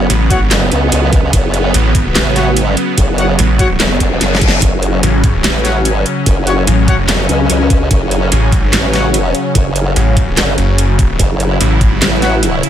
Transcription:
Already playing: analog synth pad C#3 F#3 B3
0.10 detuned saw bass A1, closed hi-hat
0.30 brass ensemble F#4 C#5 F#5, kick, closed hi-hat
0.51 wobble bass F#1, snare, clap, closed hi-hat
0.72 wobble bass C#2, closed hi-hat
0.92 wobble bass C#2, closed hi-hat
1.13 kick, closed hi-hat
1.33 wobble bass F#1, kick, closed hi-hat
1.54 closed hi-hat
1.74 detuned saw bass A1, closed hi-hat
1.95 kick, closed hi-hat
2.15 wobble bass A1, snare, clap, closed hi-hat
2.36 brass ensemble F#4 C#5 F#5, snare, closed hi-hat
2.57 wobble bass G#1, closed hi-hat
2.77 closed hi-hat
2.98 wobble bass F#1, kick, closed hi-hat
3.18 brass ensemble F#4 C#5 F#5, closed hi-hat
3.39 detuned saw bass A1, closed hi-hat
3.59 brass ensemble F#4 C#5 F#5, kick, closed hi-hat
3.80 wobble bass F#1, snare, clap, closed hi-hat, reverse cymbal
4.00 kick, closed hi-hat
4.21 wobble bass F#1, snare, closed hi-hat
4.35 snare
4.41 kick, closed hi-hat
4.48 snare
4.62 wobble bass F#1, analog synth pad C#4, kick, closed hi-hat
4.83 closed hi-hat
5.03 detuned saw bass A1, closed hi-hat
5.24 kick, closed hi-hat
5.44 wobble bass A1, snare, clap, closed hi-hat
5.65 brass ensemble F#4 C#5 F#5, snare, closed hi-hat
5.85 wobble bass G#1, closed hi-hat
6.06 closed hi-hat
6.26 wobble bass F#1, kick, closed hi-hat
6.47 brass ensemble F#4 C#5 F#5, closed hi-hat
6.67 detuned saw bass A1, closed hi-hat
6.88 brass ensemble F#4 C#5 F#5, kick, closed hi-hat
7.08 wobble bass F#1, snare, clap, closed hi-hat
7.29 wobble bass C#2, closed hi-hat
7.50 wobble bass C#2, closed hi-hat
7.70 kick, closed hi-hat
7.91 wobble bass F#1, kick, closed hi-hat
8.11 closed hi-hat
8.32 detuned saw bass A1, closed hi-hat
8.52 kick, closed hi-hat
8.73 wobble bass A1, snare, clap, closed hi-hat
8.93 brass ensemble F#4 C#5 F#5, snare, closed hi-hat
9.14 closed hi-hat
9.35 closed hi-hat
9.55 wobble bass F#1, kick, closed hi-hat
9.76 closed hi-hat
9.96 detuned saw bass A1, closed hi-hat
10.17 kick, closed hi-hat
10.37 wobble bass G1, snare, clap, closed hi-hat
10.58 detuned saw bass F#1, closed hi-hat
10.78 closed hi-hat
10.99 kick, closed hi-hat
11.19 wobble bass F#1, analog synth pad E4, kick, closed hi-hat
11.40 closed hi-hat
11.61 detuned saw bass A1, closed hi-hat
11.81 kick, closed hi-hat
12.02 wobble bass A1, snare, clap, closed hi-hat
12.22 brass ensemble F#4 C#5 F#5, snare, closed hi-hat
12.43 closed hi-hat
12.63 closed hi-hat

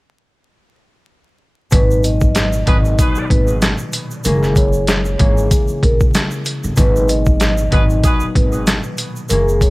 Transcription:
1.71 upright bass G#1, harp A#2 B2 D#3 F#3, vibraphone B4, kick, closed hi-hat, shaker
1.91 shaker
2.03 vibraphone D#5, closed hi-hat, shaker
2.21 kick, shaker
2.35 snare, closed hi-hat, shaker
2.53 shaker
2.65 upright bass G#1, harp A#2 B2 D#3 F#3, horn section F#4 G#4 B4, vibraphone D#5, kick, closed hi-hat
2.85 shaker
2.99 horn section F#4 G#4 B4, kick, closed hi-hat, shaker
3.15 muted upright bass stroke, shaker
3.30 upright bass G#1, vibraphone B4, kick, closed hi-hat
3.47 shaker
3.62 snare, closed hi-hat, shaker
3.78 shaker
3.92 closed hi-hat, shaker
4.11 shaker
4.24 upright bass F#1, harp C#3 E3 G#3 A#3, vibraphone A#4, closed hi-hat, shaker
4.43 snare, shaker
4.56 vibraphone C#5, kick, closed hi-hat, shaker
4.73 shaker
4.87 snare, closed hi-hat, shaker
5.05 shaker
5.18 upright bass G#1, harp C#3 E3 G#3 A#3, vibraphone C#5, kick, closed hi-hat
5.38 shaker
5.51 kick, closed hi-hat, shaker
5.68 muted upright bass stroke, shaker
5.82 upright bass A#1, vibraphone A#4, kick, closed hi-hat
6.00 kick, shaker
6.14 snare, closed hi-hat, shaker
6.31 shaker
6.45 closed hi-hat, shaker
6.64 upright bass G1, shaker
6.76 upright bass G#1, harp A#2 B2 D#3 F#3, vibraphone B4, kick, closed hi-hat, shaker
6.96 shaker
7.08 vibraphone D#5, closed hi-hat, shaker
7.26 kick, shaker
7.40 snare, closed hi-hat, shaker
7.58 shaker
7.70 upright bass G#1, harp A#2 B2 D#3 F#3, horn section F#4 G#4 B4, vibraphone D#5, kick, closed hi-hat
7.90 shaker
8.04 horn section F#4 G#4 B4, kick, closed hi-hat, shaker
8.20 muted upright bass stroke, shaker
8.35 upright bass G#1, vibraphone B4, kick, closed hi-hat
8.52 shaker
8.67 snare, closed hi-hat, shaker
8.83 shaker
8.97 closed hi-hat, shaker
9.16 shaker
9.29 upright bass F#1, harp C#3 E3 G#3 A#3, vibraphone A#4, closed hi-hat, shaker
9.49 shaker
9.61 vibraphone C#5, kick, closed hi-hat, shaker

